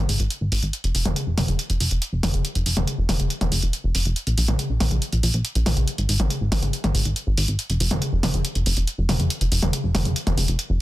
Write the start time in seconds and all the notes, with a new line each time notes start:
0.09 G#1, open hi-hat
0.20 G#1, closed hi-hat
0.30 closed hi-hat
0.41 G#1
0.52 G#1, open hi-hat
0.62 G#1, closed hi-hat
0.73 closed hi-hat
0.84 F1, closed hi-hat
0.95 F1, open hi-hat
1.05 F1, closed hi-hat, mid tom
1.16 closed hi-hat
1.27 F1
1.37 F1, open hi-hat, mid tom
1.48 F1, closed hi-hat
1.59 closed hi-hat
1.70 F1, closed hi-hat
1.80 F1, open hi-hat
1.91 F1, closed hi-hat
2.02 closed hi-hat
2.13 F1
2.23 F1, open hi-hat, mid tom
2.34 F1, closed hi-hat
2.45 closed hi-hat
2.55 F1, closed hi-hat
2.66 F1, open hi-hat
2.77 F1, closed hi-hat, mid tom
2.87 closed hi-hat
2.98 F1
3.09 F1, open hi-hat, mid tom
3.20 F1, closed hi-hat
3.30 closed hi-hat
3.41 F1, closed hi-hat, mid tom
3.52 F1, open hi-hat
3.63 F1, closed hi-hat
3.73 closed hi-hat
3.84 F1
3.95 F1, open hi-hat
4.05 F1, closed hi-hat
4.16 closed hi-hat
4.27 A#1, closed hi-hat
4.38 A#1, open hi-hat
4.48 A#1, closed hi-hat, mid tom
4.59 closed hi-hat
4.70 A#1
4.80 A#1, open hi-hat, mid tom
4.91 A#1, closed hi-hat
5.02 closed hi-hat
5.13 A#1, closed hi-hat
5.23 A#1, open hi-hat
5.34 A#1, closed hi-hat
5.45 closed hi-hat
5.55 A#1, closed hi-hat
5.66 A#1, open hi-hat, mid tom
5.77 A#1, closed hi-hat
5.88 closed hi-hat
5.98 G#1, closed hi-hat
6.09 G#1, open hi-hat
6.20 G#1, closed hi-hat, mid tom
6.30 closed hi-hat
6.41 G#1
6.52 G#1, open hi-hat, mid tom
6.63 G#1, closed hi-hat
6.73 closed hi-hat
6.84 G#1, closed hi-hat, mid tom
6.95 G#1, open hi-hat
7.05 G#1, closed hi-hat
7.16 closed hi-hat
7.27 G#1
7.37 G#1, open hi-hat
7.48 G#1, closed hi-hat
7.59 closed hi-hat
7.70 F1, closed hi-hat
7.80 F1, open hi-hat
7.91 F1, closed hi-hat, mid tom
8.02 closed hi-hat
8.13 F1
8.23 F1, open hi-hat, mid tom
8.34 F1, closed hi-hat
8.45 closed hi-hat
8.55 F1, closed hi-hat
8.66 F1, open hi-hat
8.77 F1, closed hi-hat
8.87 closed hi-hat
8.98 F1
9.09 F1, open hi-hat, mid tom
9.20 F1, closed hi-hat
9.30 closed hi-hat
9.41 F1, closed hi-hat
9.52 F1, open hi-hat
9.62 F1, closed hi-hat, mid tom
9.73 closed hi-hat
9.84 F1
9.95 F1, open hi-hat, mid tom
10.05 F1, closed hi-hat
10.16 closed hi-hat
10.27 F1, closed hi-hat, mid tom
10.37 F1, open hi-hat
10.48 F1, closed hi-hat
10.59 closed hi-hat
10.70 F1